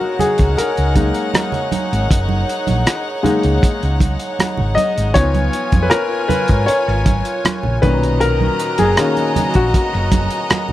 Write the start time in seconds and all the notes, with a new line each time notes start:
Already playing: G#3 A#3 D#4 F#4 A#4 C#5 F#5
0.01 muted conga
0.19 G#4, muted fingered electric bass stroke, closed hi-hat, high conga, low conga
0.38 C#2, kick, closed hi-hat
0.57 A#4, closed hi-hat, muted conga
0.77 C#2, closed hi-hat
0.95 G#3 A#3 D#4, kick, closed hi-hat, high conga
1.14 closed hi-hat
1.34 cross-stick, closed hi-hat, high conga
1.52 closed hi-hat, muted conga, low conga
1.72 muted fingered electric bass stroke, closed hi-hat, high conga
1.93 G#1, closed hi-hat
2.11 F#1, kick, closed hi-hat
2.29 muted conga, high conga
2.49 closed hi-hat
2.67 A#1, closed hi-hat, high conga
2.87 cross-stick, closed hi-hat
3.23 G#3 A#3 D#4, muted fingered electric bass stroke, closed hi-hat, high conga, low conga
3.43 C#2, closed hi-hat
3.62 kick, closed hi-hat, muted conga
3.81 C#2, closed hi-hat, muted conga
4.00 kick, closed hi-hat, high conga
4.20 closed hi-hat
4.39 muted fingered electric bass stroke, cross-stick, closed hi-hat, high conga
4.57 G#1, muted conga, low conga
4.75 D#5, closed hi-hat, high conga
4.98 G#1, closed hi-hat
5.14 C#2 F3 B3 D#4 F4 C#5 G#5, kick, closed hi-hat
5.34 closed hi-hat, muted conga, high conga
5.53 closed hi-hat
5.72 F2, kick, closed hi-hat, high conga
5.83 B4
5.90 A#4, cross-stick, closed hi-hat, muted conga
6.28 B4, muted fingered electric bass stroke, closed hi-hat, high conga, low conga
6.48 G#2, kick, closed hi-hat
6.66 C#5, muted fingered electric bass stroke, closed hi-hat
6.88 G#1, cross-stick
7.06 kick, closed hi-hat, high conga
7.25 closed hi-hat
7.45 muted fingered electric bass stroke, cross-stick, closed hi-hat, high conga
7.63 A#1, muted conga, low conga
7.82 B1 A#2 D#3 C#4 F#4 B4 D#5 A#5, kick, closed hi-hat, high conga
8.03 closed hi-hat
8.20 A#4, closed hi-hat, muted conga
8.41 high conga
8.59 closed hi-hat
8.78 F#1 G#4, closed hi-hat, high conga
8.97 D#3 A#3 C#4, cross-stick, closed hi-hat, muted conga
9.17 closed hi-hat, muted conga
9.36 muted fingered electric bass stroke, closed hi-hat, high conga, low conga
9.54 A#1 F#4, kick, closed hi-hat
9.74 kick, closed hi-hat
9.93 F#1, cross-stick, muted conga
10.12 kick, closed hi-hat, high conga
10.30 closed hi-hat
10.50 muted fingered electric bass stroke, cross-stick, closed hi-hat, muted conga, high conga
10.69 muted conga, low conga